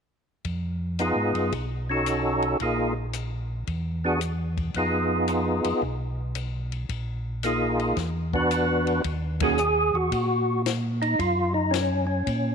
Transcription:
0.45 1.13 F2 medium
0.45 kick soft
0.45 ride soft
0.99 1.53 B3 soft
0.99 1.53 D#4 soft
0.99 1.54 F4 soft
0.99 1.54 G#4 soft
0.99 hi-hat pedal soft
0.99 ride soft
1.16 1.33 G#2 soft
1.34 1.51 F#2 medium
1.34 ride soft
1.52 2.56 B1 medium
1.52 kick soft
1.52 ride soft
1.89 2.57 C#4 medium
1.89 2.57 D#4 soft
1.89 2.57 F#4 soft
1.89 2.58 A4 medium
2.06 hi-hat pedal medium
2.06 ride soft
2.42 ride soft
2.60 3.63 A#1 medium
2.60 2.94 A#3 soft
2.60 2.94 D#4 soft
2.60 2.94 F4 soft
2.60 2.94 G#4 soft
2.60 kick soft
2.60 ride soft
3.13 hi-hat pedal soft
3.13 ride soft
3.67 4.71 E2 medium
3.67 kick soft
3.67 ride soft
4.04 4.20 B3 medium
4.04 4.20 D4 soft
4.04 4.20 F#4 medium
4.04 4.21 G#4 medium
4.21 hi-hat pedal soft
4.21 ride soft
4.57 kick soft
4.57 ride soft
4.74 5.61 F2 medium
4.74 5.83 B3 soft
4.74 5.83 D#4 soft
4.74 5.84 F4 soft
4.74 5.84 G#4 soft
4.74 kick soft
4.74 ride soft
5.28 hi-hat pedal soft
5.28 ride soft
5.64 5.73 F2 soft
5.64 ride medium
5.81 6.85 B1 medium
5.81 kick soft
6.35 hi-hat pedal soft
6.35 ride soft
6.72 ride soft
6.89 7.93 A#1 medium
6.89 kick soft
6.89 ride soft
7.43 7.98 A#3 soft
7.43 7.98 D#4 soft
7.43 7.98 F4 soft
7.43 7.98 G#4 medium
7.43 hi-hat pedal soft
7.43 ride soft
7.79 ride soft
7.96 9.00 E2 medium
7.96 kick soft
7.96 snare soft
7.96 ride soft
8.33 9.01 B3 medium
8.33 9.02 D4 soft
8.33 9.02 F#4 soft
8.33 9.02 B4 medium
8.33 kick soft
8.51 hi-hat pedal soft
8.51 ride medium
8.87 ride soft
9.04 9.91 D#2 medium
9.04 kick soft
9.04 ride medium
9.40 9.57 D#3 medium
9.40 9.57 A#3 medium
9.40 9.57 C#4 medium
9.40 9.58 F#4 medium
9.40 9.97 G#4 loud
9.40 kick medium
9.40 ride medium
9.58 hi-hat pedal soft
9.93 10.10 E2 medium
9.93 10.62 F#4 medium
10.11 11.15 A#2 medium
10.11 kick soft
10.11 ride medium
10.66 snare medium
10.66 hi-hat pedal soft
10.66 ride medium
11.02 11.20 D#4 medium
11.02 ride soft
11.19 12.23 F#2 medium
11.19 11.53 F4 medium
11.19 kick soft
11.19 ride soft
11.54 11.73 D#4 medium
11.71 12.05 C#4 medium
11.71 snare medium
11.71 hi-hat pedal soft
11.71 ride medium
12.07 12.55 C#4 medium
12.27 12.55 A#2 medium
12.27 kick soft
12.27 ride soft

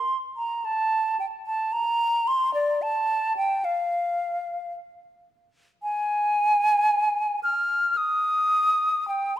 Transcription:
0.00 0.17 C6 medium
0.37 0.67 A#5 medium
0.65 1.19 A5 medium
1.20 1.26 G5 medium
1.46 1.74 A5 medium
1.73 2.29 A#5 loud
2.28 2.53 C6 medium
2.54 2.84 D5 medium
2.82 3.36 A5 medium
3.37 3.66 G5 medium
3.65 4.73 F5 medium
5.83 7.40 G#5 loud
7.43 7.99 F6 medium
7.97 9.07 D#6 medium
9.08 9.38 G5 medium

